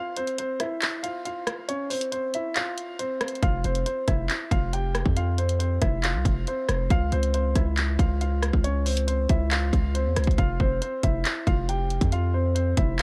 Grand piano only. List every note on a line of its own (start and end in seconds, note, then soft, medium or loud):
0.00 0.15 F4 medium
0.00 0.14 F5 loud
0.17 0.36 C4 medium
0.17 0.36 C5 medium
0.38 0.58 C4 medium
0.38 0.58 C5 medium
0.60 1.01 E4 medium
0.60 1.01 E5 medium
1.03 1.23 F4 medium
1.03 1.23 F5 medium
1.25 1.66 F4 medium
1.25 1.66 F5 medium
1.68 1.88 C#4 medium
1.68 1.88 C#5 medium
1.90 2.10 C4 medium
1.90 2.10 C5 medium
2.12 2.32 C4 medium
2.12 2.31 C5 medium
2.34 2.54 E4 medium
2.34 2.54 E5 medium
2.56 2.97 F4 medium
2.56 2.96 F5 medium
2.99 3.40 C4 medium
2.99 3.40 C5 medium
3.43 3.62 F4 medium
3.43 3.62 F5 medium
3.65 3.84 C4 medium
3.65 3.84 C5 medium
3.86 4.06 C4 medium
3.86 4.05 C5 medium
4.08 4.49 E4 medium
4.08 4.49 E5 medium
4.51 4.71 F4 medium
4.51 4.71 F5 medium
4.73 5.14 G4 medium
4.73 5.14 G5 medium
5.16 5.36 F4 medium
5.16 5.36 F5 medium
5.38 5.58 C4 medium
5.38 5.58 C5 medium
5.59 5.79 C4 medium
5.59 5.79 C5 medium
5.81 6.01 E4 medium
5.81 6.01 E5 medium
6.04 6.45 F4 medium
6.04 6.44 F5 medium
6.48 6.89 C4 medium
6.48 6.88 C5 medium
6.91 7.10 F4 medium
6.91 7.10 F5 loud
7.12 7.32 C4 medium
7.12 7.32 C5 medium
7.34 7.54 C4 medium
7.34 7.53 C5 medium
7.56 7.97 E4 medium
7.56 7.97 E5 medium
7.99 8.19 F4 medium
7.99 8.18 F5 medium
8.21 8.62 F4 medium
8.21 8.62 F5 medium
8.64 8.84 C#4 medium
8.64 8.84 C#5 medium
8.86 9.06 C4 medium
8.86 9.05 C5 medium
9.07 9.27 C4 medium
9.07 9.27 C5 medium
9.30 9.50 E4 medium
9.30 9.49 E5 medium
9.51 9.93 F4 medium
9.51 9.92 F5 loud
9.95 10.36 C4 medium
9.95 10.36 C5 medium
10.38 10.58 F4 medium
10.38 10.58 F5 medium
10.60 10.80 C4 medium
10.60 10.80 C5 medium
10.82 11.01 C4 medium
10.82 11.01 C5 medium
11.03 11.45 E4 medium
11.03 11.44 E5 medium
11.47 11.67 F4 medium
11.47 11.66 F5 medium
11.69 12.10 G4 medium
11.69 12.10 G5 medium
12.12 12.32 F4 medium
12.12 12.32 F5 medium
12.34 12.54 C4 medium
12.34 12.53 C5 medium
12.55 12.75 C4 medium
12.55 12.75 C5 medium
12.77 12.97 E4 medium
12.77 12.97 E5 medium